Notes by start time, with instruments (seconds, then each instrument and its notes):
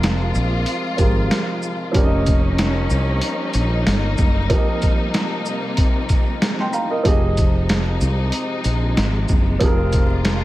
Already playing: fretless electric bass F1, string section C3 F3 G#3 F4, upright piano F3 C4 G4 G#4 A#4
0.03 snare, closed hi-hat
0.35 fretless electric bass A#1, shaker
0.66 closed hi-hat
0.97 fretless electric bass G#1, upright piano F3 C4 G4 G#4 A#4, kick, closed hi-hat, shaker
1.31 snare, closed hi-hat
1.62 shaker
1.92 fretless electric bass F1, upright piano F3 C#4 G4, string section G3 A#3 C#4 D#4, kick, closed hi-hat
1.96 upright piano A#4 D5
2.03 upright piano D#5
2.26 kick, closed hi-hat, shaker
2.58 snare, closed hi-hat
2.90 fretless electric bass C2, shaker
3.22 closed hi-hat
3.54 fretless electric bass A#1, closed hi-hat, shaker
3.86 fretless electric bass G1, snare, closed hi-hat
4.18 fretless electric bass F#1, kick, shaker
4.50 string section C3, upright piano F3 C4 G4 A#4, kick, closed hi-hat
4.55 upright piano D#5
4.82 kick, closed hi-hat, shaker
5.14 snare, closed hi-hat
5.45 shaker
5.77 kick, closed hi-hat
6.09 kick, closed hi-hat, shaker
6.42 snare, closed hi-hat
6.59 upright piano G5 C6, snare
6.73 upright piano F5 A#5, shaker
6.90 upright piano A#4 D#5
7.03 fretless electric bass F1, string section C3 F3 G#3 D#4, upright piano F3 C4 G4 G#4, kick, closed hi-hat
7.08 upright piano D#5
7.37 kick, closed hi-hat, shaker
7.69 snare, closed hi-hat
8.01 fretless electric bass C2, shaker
8.32 closed hi-hat
8.64 fretless electric bass A#1, closed hi-hat, shaker
8.97 fretless electric bass G#1, snare, closed hi-hat
9.28 fretless electric bass F#1, kick, shaker
9.59 fretless electric bass F1, upright piano F3 C4 G4 G#4, string section F4, kick, closed hi-hat
9.64 upright piano A#4
9.93 kick, closed hi-hat, shaker
10.25 snare, closed hi-hat